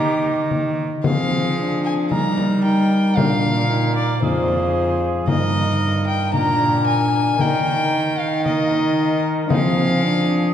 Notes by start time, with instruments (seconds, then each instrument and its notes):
Already playing: cello D#3, trombone D#4, cor anglais G4, violin A#5
0.51 frame drum
1.04 cello F3, trombone C4, cor anglais G#4, violin F5, frame drum
1.59 trombone D4
1.85 violin G#5
2.11 cello G3, trombone D#4, cor anglais A#4, violin A#5, frame drum
2.38 frame drum
2.64 trombone D#4, cor anglais A#4, violin G5
3.17 cello A#2, trombone D4, cor anglais A#4, violin F5, frame drum
3.70 trombone D#4
3.96 violin D5
4.22 cello F2, trombone F4, cor anglais G#4, violin C5, frame drum
4.48 frame drum
5.28 cello G2, trombone D#4, cor anglais A#4, violin D#5, frame drum
6.07 violin G5
6.33 cello A#2, trombone D4, cor anglais A#4, violin A#5, frame drum
6.60 frame drum
6.87 violin G#5
7.37 cello D#3, trombone D#4, cor anglais A#4, violin G5, frame drum
8.19 violin F5
8.45 trombone D#4, cor anglais A#4, violin D#5, frame drum
8.71 frame drum
9.50 cello F3, trombone C4, cor anglais G#4, violin F5, frame drum
10.04 trombone D4